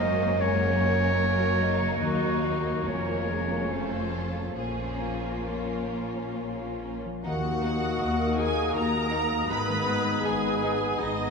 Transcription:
Already playing: double bass section F#1, cello section F#2, harp F#2 A#3, viola section F#3 A#3, violin section A#3 C5, clarinet D#5
0.02 violin section C#4, harp F#4
0.23 harp C#5
0.40 viola section G#3, violin section C#4 A#4, harp A#4, clarinet C#5
0.61 harp F#5
0.80 viola section F#3, harp C#6
1.00 harp A#4
1.19 viola section A#3, violin section A#3 C#4, harp C#5
1.40 harp F#4
1.60 harp A#3, violin section D#4
1.80 harp C#3
1.99 cello section D#2, double bass section D#2, harp D#3, viola section F#3, violin section D#4, clarinet F#4
2.22 harp C4
2.43 viola section F#3, harp F#4
2.66 harp C5
2.86 double bass section F1, cello section F2, harp F3, viola section F3, violin section C#4 A#4, clarinet C#5
3.09 harp F4
3.29 viola section G#3, harp F5
3.50 harp A#4
3.70 harp F3, viola section A3, violin section F4 A4, clarinet C5
3.91 harp F4
4.13 viola section F3, harp F5
4.35 harp A4
4.56 double bass section A#1, cello section A#2, harp A#2, viola section F3 A#3, violin section C#4 F4 G#4, clarinet C5
4.79 harp C#4
5.02 harp F4
5.24 harp F5
5.45 violin section F4, clarinet A#4, harp C#5
5.69 harp F5
5.92 harp F6
6.14 harp C#5
6.38 harp F5
6.60 harp F4
6.83 harp C#4
7.05 harp F3
7.24 cello section D#2, double bass section D#2, harp D#3, violin section A#3 D#4 F#5, bassoon A#3, french horn section A#3 D#4, cor anglais F#4, viola section F#4, clarinet A#4, flute section D#6
7.44 harp D#4
7.62 violin section A#3 D#4, harp F#4
7.82 harp D#5
8.00 cello section D#2, double bass section D#2, violin section A#3 D#4, harp A#4
8.20 harp F#5
8.37 violin section A#3 D#4 G#5, viola section G#4, cor anglais G#4, harp D#6
8.57 harp A#4
8.74 cello section D#2, double bass section D#2, violin section A#3 D#4 A#5, harp F#4, viola section A#4, cor anglais A#4
8.94 harp A#3
9.11 violin section A#3 D#4, harp D#4
9.32 harp A#3
9.49 double bass section G#1, harp G#2, cello section G#2, french horn section B3, bassoon B3, violin section B3 D#4 B5, clarinet G#4, cor anglais B4, viola section B4
9.68 harp D#3
9.86 violin section B3 D#4, harp D#4
10.06 harp D#5
10.24 double bass section G#1, cello section G#2, violin section B3 D#4 G#5, cor anglais G#4, viola section G#4, harp B4
10.43 harp D#5
10.62 violin section B3 D#4, harp D#6
10.81 harp B4
10.99 double bass section G#1, cello section G#2, violin section B3 D#4 D#5, viola section D#4, cor anglais D#4, harp D#4
11.17 harp B3

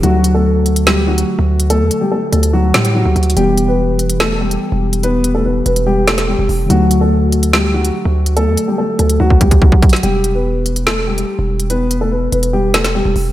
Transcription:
0.00 808-style bass D2, synth keys D3 F#3 A3, grand piano F#4, closed hi-hat
0.04 grand piano F#3, synth keys F#4
0.24 closed hi-hat
0.34 grand piano A3 A4
0.66 closed hi-hat
0.76 closed hi-hat
0.87 grand piano G3 G4, snare
1.08 grand piano F#3 F#4
1.18 closed hi-hat
1.39 808-style bass D2
1.60 closed hi-hat
1.70 grand piano A3 A4, closed hi-hat
1.80 808-style bass E2
1.91 closed hi-hat
2.01 grand piano G3 G4
2.12 grand piano A3 A4
2.32 808-style bass D2, grand piano A3 A4, closed hi-hat
2.43 closed hi-hat
2.53 grand piano F#3 F#4
2.74 808-style bass A2, grand piano G3 G4, cross-stick, snare, closed hi-hat
2.85 closed hi-hat
2.95 grand piano F#3 F#4
3.05 808-style bass D2
3.16 808-style bass D2, closed hi-hat
3.23 closed hi-hat
3.30 closed hi-hat
3.34 808-style bass E1, synth keys E3 G3, grand piano G3 G4, closed hi-hat
3.38 synth keys B3 G4
3.58 closed hi-hat
3.68 grand piano B3 B4
3.99 closed hi-hat
4.10 closed hi-hat
4.20 grand piano A3 A4, snare
4.41 grand piano G3 G4
4.51 closed hi-hat
4.72 808-style bass E1
4.93 closed hi-hat
5.03 grand piano B3 B4, closed hi-hat
5.24 closed hi-hat
5.35 grand piano A3 A4
5.45 grand piano B3 B4
5.66 808-style bass E1, grand piano B3 B4, closed hi-hat
5.76 closed hi-hat
5.87 grand piano G3 G4
6.08 grand piano A3 A4, cross-stick, snare, closed hi-hat
6.18 snare, closed hi-hat
6.28 grand piano G3 G4
6.39 808-style bass E1
6.49 808-style bass E1, open hi-hat
6.66 808-style bass D2, synth keys D3 F#3, grand piano F#4, closed hi-hat
6.71 grand piano F#3, synth keys A3 F#4
6.91 closed hi-hat
7.01 grand piano A3 A4
7.32 closed hi-hat
7.43 closed hi-hat
7.53 grand piano G3 G4, snare
7.74 grand piano F#3 F#4
7.85 closed hi-hat
8.05 808-style bass D2
8.26 closed hi-hat
8.37 grand piano A3 A4, closed hi-hat
8.47 808-style bass E2
8.57 closed hi-hat
8.68 grand piano G3 G4
8.78 grand piano A3 A4
8.99 808-style bass D2, grand piano A3 A4, closed hi-hat
9.10 closed hi-hat
9.20 808-style bass D2, grand piano F#3 F#4
9.30 kick
9.41 grand piano G3 G4, kick, closed hi-hat
9.51 kick, closed hi-hat
9.62 grand piano F#3 F#4, kick
9.72 kick
9.82 kick, closed hi-hat
9.89 snare, closed hi-hat
9.96 closed hi-hat
10.03 808-style bass E1, grand piano G3 G4, closed hi-hat
10.24 closed hi-hat
10.34 grand piano B3 B4
10.66 closed hi-hat
10.76 closed hi-hat
10.87 grand piano A3 A4, snare
11.07 grand piano G3 G4
11.18 closed hi-hat
11.39 808-style bass E1
11.60 closed hi-hat
11.70 grand piano B3 B4, closed hi-hat
11.91 closed hi-hat
12.01 grand piano A3 A4
12.12 grand piano B3 B4
12.32 808-style bass E1, grand piano B3 B4, closed hi-hat
12.43 closed hi-hat
12.53 grand piano G3 G4
12.74 grand piano A3 A4, snare, closed hi-hat
12.84 snare, closed hi-hat
12.95 grand piano G3 G4
13.05 808-style bass E1
13.16 808-style bass E1, open hi-hat

